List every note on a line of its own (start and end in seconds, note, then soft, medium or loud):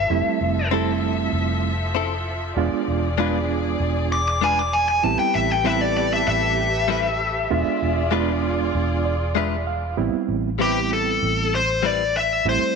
0.00 0.68 E5 loud
0.10 0.25 F1 medium
0.10 5.00 F3 medium
0.10 0.61 G3 medium
0.10 0.61 A3 medium
0.10 0.61 C4 medium
0.10 0.61 E4 loud
0.10 2.54 A4 medium
0.10 2.54 E5 medium
0.41 1.29 F1 medium
0.71 1.72 G3 medium
0.71 1.73 A3 medium
0.71 0.90 C4 medium
0.71 1.73 C4 medium
0.71 1.73 E4 loud
0.71 0.91 E4 medium
0.71 0.91 A4 loud
1.33 2.52 F1 medium
1.95 2.14 C4 medium
1.95 2.14 E4 medium
1.95 2.14 A4 medium
2.57 2.71 E1 loud
2.57 3.07 G#3 medium
2.57 3.08 B3 medium
2.57 3.08 D4 medium
2.57 3.08 F4 loud
2.57 5.02 G#4 medium
2.57 5.02 D5 medium
2.88 3.76 E1 medium
3.18 3.37 G#3 medium
3.18 4.20 G#3 medium
3.18 4.20 B3 medium
3.18 3.37 D4 medium
3.18 4.20 D4 medium
3.18 3.38 F4 medium
3.18 4.20 F4 loud
3.18 3.38 B4 medium
3.80 5.00 E1 loud
4.12 4.27 D6 loud
4.28 4.42 D6 loud
4.41 4.60 G#3 medium
4.41 4.61 D4 medium
4.41 4.61 F4 medium
4.41 4.62 B4 medium
4.41 4.58 G#5 loud
4.59 4.73 D6 medium
4.73 4.87 G#5 loud
4.88 5.04 G#5 loud
5.03 5.19 A1 loud
5.03 5.54 G3 medium
5.03 5.54 B3 medium
5.03 5.54 C4 medium
5.03 5.54 E4 medium
5.03 7.48 G4 medium
5.03 7.49 A4 medium
5.03 7.48 B4 medium
5.03 5.19 A5 loud
5.19 5.34 G5 medium
5.35 6.23 A1 medium
5.35 5.50 E5 medium
5.51 5.66 G5 medium
5.64 6.66 G3 medium
5.64 5.84 G3 medium
5.64 6.66 B3 medium
5.64 6.66 C4 medium
5.64 5.84 C4 medium
5.64 6.66 E4 medium
5.64 5.85 E4 medium
5.64 5.85 B4 medium
5.64 5.81 E5 medium
5.81 5.96 D5 loud
5.97 6.12 D5 medium
6.13 6.27 E5 loud
6.28 7.47 A1 medium
6.28 8.09 E5 loud
6.88 7.07 G3 medium
6.88 7.07 C4 medium
6.88 7.08 E4 medium
6.88 7.08 B4 medium
7.49 7.66 E1 loud
7.49 8.01 G#3 loud
7.49 8.01 B3 medium
7.49 8.01 D4 medium
7.49 9.95 F4 medium
7.49 8.01 F4 loud
7.49 9.95 G#4 medium
7.49 9.95 D5 medium
7.82 8.71 E1 medium
8.11 8.31 G#3 medium
8.11 9.13 G#3 loud
8.11 9.13 B3 medium
8.11 8.31 D4 medium
8.11 9.13 D4 medium
8.11 9.13 F4 loud
8.11 8.31 F4 loud
8.11 8.31 B4 medium
8.75 9.94 E1 loud
9.05 9.34 D5 medium
9.35 9.54 G#3 medium
9.35 9.55 D4 medium
9.35 9.55 F4 loud
9.35 9.56 B4 loud
9.35 9.65 E5 medium
9.67 9.96 F5 medium
9.97 10.13 A1 medium
9.97 10.48 G3 medium
9.97 10.48 B3 medium
9.97 10.48 C4 medium
9.97 10.49 E4 medium
10.28 11.17 A1 medium
10.59 10.78 G3 medium
10.59 11.61 G3 medium
10.59 11.60 B3 medium
10.59 11.61 C4 medium
10.59 10.79 C4 medium
10.59 11.61 E4 medium
10.59 10.79 E4 medium
10.59 10.89 G4 medium
10.59 10.79 B4 medium
10.93 11.55 A4 medium
11.22 12.42 A1 medium
11.55 11.86 C5 medium
11.83 12.02 G3 medium
11.83 12.02 C4 medium
11.83 12.03 E4 medium
11.83 12.03 B4 medium
11.83 12.17 D5 medium
12.17 12.45 E5 loud
12.45 12.60 A1 loud
12.45 12.75 G3 medium
12.45 12.75 A3 medium
12.45 12.75 C4 medium
12.45 12.75 E4 medium
12.45 12.75 C5 medium